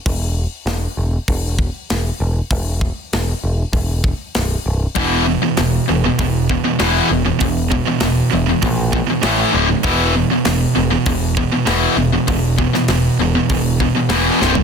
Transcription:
<<
  \new Staff \with { instrumentName = "Distorted electric guitar" } { \clef bass \time 4/4 \key e \dorian \tempo 4 = 98 r1 | r1 | <e, b, e>8 <e, b,>16 <e, b,>16 <e, b,>8 <e, b,>16 <e, b,>16 <e, b,>8 <e, b,>16 <e, b,>16 <e, b, e>8 <e, b,>16 <e, b,>16 | <e, b,>8 <e, b,>16 <e, b,>16 <e, b,>8 <e, b,>16 <e, b,>16 <e, b,>8 <e, b,>16 <e, b,>16 <a, e a>8 <d, a, d>16 <d, a,>16 |
<e, b, e>8 <e, b,>16 <e, b,>16 <e, b,>8 <e, b,>16 <e, b,>16 <e, b,>8 <e, b,>16 <e, b,>16 <e, b, e>8 <e, b,>16 <e, b,>16 | <e, b,>8 <e, b,>16 <e, b,>16 <e, b,>8 <e, b,>16 <e, b,>16 <e, b,>8 <e, b,>16 <e, b,>16 <e, b, e>8 <c, g, c>16 <c, g,>16 | }
  \new Staff \with { instrumentName = "Distorted electric guitar" } { \clef bass \time 4/4 \key e \dorian r1 | r1 | <e, b, e>8 <e, b,>16 <e, b,>16 <e, b,>8 <e, b,>16 <e, b,>16 <e, b,>8 <e, b,>16 <e, b,>16 <e, b, e>8 <e, b,>16 <e, b,>16 | <e, b,>8 <e, b,>16 <e, b,>16 <e, b,>8 <e, b,>16 <e, b,>16 <e, b,>8 <e, b,>16 <e, b,>16 <a, e a>8 <d, a, d>16 <d, a,>16 |
<e, b, e>8 <e, b,>16 <e, b,>16 <e, b,>8 <e, b,>16 <e, b,>16 <e, b,>8 <e, b,>16 <e, b,>16 <e, b, e>8 <e, b,>16 <e, b,>16 | <e, b,>8 <e, b,>16 <e, b,>16 <e, b,>8 <e, b,>16 <e, b,>16 <e, b,>8 <e, b,>16 <e, b,>16 <e, b, e>8 <c, g, c>16 <c, g,>16 | }
  \new Staff \with { instrumentName = "Picked electric bass" } { \clef bass \time 4/4 \key e \dorian e,,4 e,,8 e,,8 e,,4 e,,8 e,,8 | e,,4 e,,8 e,,8 e,,4 b,,,8 c,,8 | e,,4 e,,8 e,,8 e,,4 e,,8 e,,8 | e,,4 e,,8 e,,8 ais,,4 a,,8 d,,8 |
e,,4 e,,8 e,,8 e,,4 e,,8 e,,8 | e,,4 e,,8 e,,8 e,,4 e,,8 c,,8 | }
  \new DrumStaff \with { instrumentName = "Drums" } \drummode { \time 4/4 <hho bd>4 <hho sn>4 <hho bd>8 bd8 <hho sn>4 | <hho bd>8 bd8 <hho sn>4 <hho bd>8 bd8 <hho sn>4 | <hho bd>4 <hho sn>4 <hho bd>8 bd8 <hho sn>4 | <hho bd>8 bd8 <hho sn>4 <hho bd>8 bd8 <hho sn>4 |
<hho bd>4 <hho sn>4 <hho bd>8 bd8 <hho sn>4 | <hho bd>8 bd16 sn16 <hho sn>4 <hho bd>8 bd8 <hho sn>8 sn16 tomfh16 | }
>>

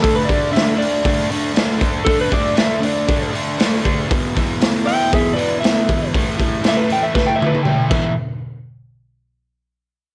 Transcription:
<<
  \new Staff \with { instrumentName = "Electric slide guitar" } { \time 4/4 \key d \lydian \tempo 4 = 118 a'16 b'16 d''8 e''8 d''4 r4. | a'16 b'16 d''8 e''8 d''4 r4. | r4. <e'' g''>8 <gis' e''>8 <b' d''>8 e''4 | r4 e''16 b'16 g''16 e''16 b'16 g''16 e''16 b'16 g''8 e''8 |
r1 | }
  \new Staff \with { instrumentName = "Overdriven electric guitar" } { \clef bass \time 4/4 \key d \lydian <d a d'>8 <d a d'>8 <d a d'>8 <d a d'>8 <d a d'>8 <d a d'>8 <d a d'>8 <d a d'>8 | <d a d'>8 <d a d'>8 <d a d'>8 <d a d'>8 <d a d'>8 <d a d'>8 <d a d'>8 <d a d'>8 | <e, b, e>8 <e, b, e>8 <e, b, e>8 <e, b, e>8 <e, b, e>8 <e, b, e>8 <e, b, e>8 <e, b, e>8 | <a, e a>8 <a, e a>8 <a, e a>8 <a, e a>8 <a, e a>8 <a, e a>8 <a, e a>8 <e, b, e>8 |
r1 | }
  \new DrumStaff \with { instrumentName = "Drums" } \drummode { \time 4/4 <hho bd>8 <hho bd>8 <hho sn>8 hho8 <hho bd>8 hho8 <hho sn>8 <hho bd>8 | <hho bd>8 <hho bd>8 <hho sn>8 hho8 <hho bd>8 hho8 <hho sn>8 <hho bd>8 | <hho bd>8 <hho bd>8 <hho sn>8 hho8 <hho bd>8 hho8 <hho sn>8 <hho bd>8 | <hho bd>8 <hho bd>8 <hho sn>8 hho8 <bd sn>8 tommh16 tommh16 toml8 <cymc bd>8 |
r4 r4 r4 r4 | }
>>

